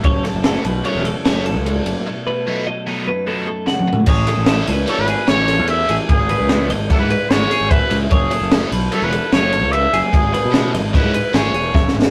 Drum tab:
CC |------------------------------|------------------------------|x-----------------------------|------------------------------|
RD |x--x--x--x--x--x--x--x--x--x--|------------------------------|---x--x--x--x--x--x--x--x--x--|x--x--x--x--x--x--x--x--x--x--|
SD |---o--o-----------o-----------|------------------------o-----|---o--o--o--o-----o--o--------|------o-----------o--o--------|
T2 |------------------------------|--------------------------o---|------------------------------|------------------------------|
FT |------------------------------|----------------------------o-|------------------------------|------------------------------|
BD |o-----------------------------|------------------------------|o-----------------------------|o-----------o-----------o-----|

CC |------------------------------|------------------------------|
RD |x--x--x--x--x--x--x--x--x--x--|x--x--x--x--x--x--x--x--------|
SD |------o-----------o-----------|------o--o--o-----o-----o-o-o-|
T2 |------------------------------|------------------------------|
FT |------------------------------|------------------------------|
BD |o-----------------------------|o-----------o-----------o-----|